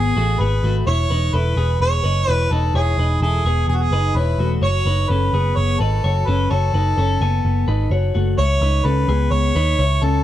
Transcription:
Already playing: G#1 B3 G#4
0.16 A1 A3 F#4
0.40 G#1 B3 G#4 B4
0.63 G#1 A3 F#4
0.87 E1 E4 C#5
1.10 E1 D#4 B4
1.34 E1 E4 A4 B4
1.56 E1 B3 G#4
1.80 E1 C#5
2.04 F#1 D#4 B4
2.28 E1 E4 B4 C#5
2.51 E1 D#4 A4 B4
2.74 E1 E4 G#4 C#5
2.98 E1 D#4 B4
3.21 E1 E4 G#4 A4
3.45 E1 B3 G#4
3.68 E1 G#4
3.76 F#4
3.82 G#4
3.91 F#1 D#4 B4
4.15 E1 E4 B4 C#5
4.38 E1 A3 F#4
4.62 F#1 F#4 C#5
4.85 F#1 D#4 B4
5.10 F#1 C#4 A4 B4
5.33 F#1 B3 G#4
5.57 F#1 C#5
5.80 G#1 D#4 A4 B4
6.04 F#1 F#4 C#5
6.27 F#1 C#4 A4 B4
6.51 F#1 F#4 A4 C#5
6.74 F#1 D#4 B4
6.98 F#1 C#4 A4
7.21 F#1 B3 G#5
7.45 F#1
7.68 G#1 D#4 B4
7.91 F#1 F#4 C#5
8.15 F#1 A3 F#4
8.38 C#2 E4 C#5
8.61 C#2 D#4 B4
8.85 C#2 C#4 A4 B4
9.08 C#2 B3 G#4
9.31 C#2 C#5
9.55 D#2 D#4 B4
9.79 C#2 E4 C#5
10.02 C#2 C#4 A4

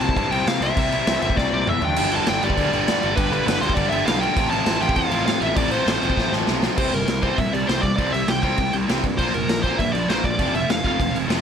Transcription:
0.01 C2 C3 G3 C4 A5, crash
0.09 kick
0.17 G2 C3 G3 C4 A5, kick, crash
0.31 C2 C3 G3 C4 G5, crash
0.47 C3 G3 C4 F5, snare, crash
0.61 C2 C3 G3 C4 E5, crash
0.76 C2 C3 G3 C4, kick, crash
0.92 C3 G3 C4, crash
1.07 C2 C3 G3 C4, snare, crash
1.22 G1 C3 G3 C4 E5, crash
1.30 kick
1.37 C2 C3 G3 C4 D5, kick, snare
1.53 C2 C3 G3 C4 D5
1.67 E1 E2 B2 E3 E5, mid tom
1.82 D2 D3 A3 D4 G5, floor tom
1.96 G1 G2 D3 G3, crash
2.11 G2 D3 G3, crash
2.16 A5
2.26 G1 G2 D3 G3 G5, snare, crash
2.43 G1 G2 D3 G3 D5, crash
2.50 kick
2.58 D2 G2 D3 G3, kick, crash
2.73 G1 G2 D3 G3, crash
2.88 G2 D3 G3, snare, crash
3.03 G1 G2 D3 G3, crash
3.16 G1 G2 D3 G3 B4, kick, crash
3.31 G2 D3 G3 B4, crash
3.46 G1 G2 D3 G3 B4, snare, crash
3.61 D2 G2 D3 G3 C5, crash
3.70 kick
3.74 G1 G2 D3 G3 D5, kick, crash
3.90 G1 G2 D3 G3 E5, crash
4.06 B1 G2 D3 G3 F5, snare, crash
4.20 G2 D3 G3 G5, crash
4.36 A1 F2 C3 F3, kick, crash
4.50 F2 C3 F3 A5, crash
4.66 A1 F2 C3 F3, snare, crash
4.81 A1 F2 C3 F3 G5, crash
4.89 kick
4.96 E2 F2 C3 F3 F5, kick, crash
5.11 A1 F2 C3 F3, crash
5.26 F2 A2 C3 F3 F5, snare, crash
5.41 A1 F2 C3 F3 E5, crash
5.56 A1 F2 C3 F3 D5, kick, crash
5.71 F2 C3 F3 C5, crash
5.86 A1 F2 C3 F3, snare, crash
6.01 E1 F2 C3 F3, crash
6.10 kick
6.17 A1 F2 C3 F3, kick, snare
6.31 A1 F2 C3 F3, snare
6.46 B1 F2 C3 F3, snare
6.62 F2 C3 F3, snare
6.76 C2 C3 G3 C4 C5, kick, crash
6.92 G1 C3 G3 A#4, crash
7.06 C2 C3 G3, snare, crash
7.22 C3 G3 C4 C5, kick, crash
7.38 A#2 C3 G3 E5, kick, crash
7.53 C2 C3 G3 D5, crash
7.66 C2 C3 G3 C4 C5, snare, crash
7.81 C2 C3 G3 D5, kick, crash
7.96 C2 C3 G3 C4 D5, kick, crash
8.12 C2 C3 G3 E5, crash
8.28 C2 C3 G3 G5, snare, crash
8.43 C2 C3 G3 C4 G5, kick, crash
8.57 C2 C3 G3, kick, crash
8.73 C2 C3 G3, crash
8.89 C2 C3 G3 C4, snare, crash
9.04 G2 C3 G3, kick, crash
9.18 A#1 A#2 F3 A#3 C5, kick, crash
9.34 F1 A#2 F3 A#4, crash
9.49 A#1 A#2 F3, snare, crash
9.63 A#2 F3 A#3 C5, kick, crash
9.78 G2 A#2 F3 E5, kick, crash
9.93 A#1 A#2 F3 D5, crash
10.08 A#1 A#2 F3 A#3 C5, snare, crash
10.24 A#1 A#2 F3 D5, kick, crash
10.39 F1 F2 C3 F3, kick, crash
10.54 F1 F2 C3 E5, crash
10.68 F1 F2 C3 F5, snare, crash
10.84 F1 F2 C3 F3 F5, kick, crash
11.00 F1 F2 C3, kick, crash
11.13 F1 F2 C3, crash
11.28 F1 F2 C3 F3, snare, crash

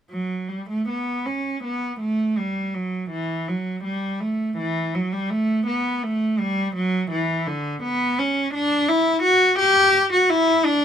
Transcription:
0.10 F#3
0.49 G3
0.70 A3
0.89 B3
1.26 C#4
1.64 B3
2.00 A3
2.38 G3
2.74 F#3
3.10 E3
3.48 F#3
3.84 G3
4.20 A3
4.57 E3
4.94 F#3
5.12 G3
5.30 A3
5.67 B3
6.03 A3
6.39 G3
6.76 F#3
7.11 E3
7.47 D3
7.83 B3
8.19 C#4
8.54 D4
8.88 E4
9.23 F#4
9.59 G4
10.13 F#4
10.30 E4
10.65 D4

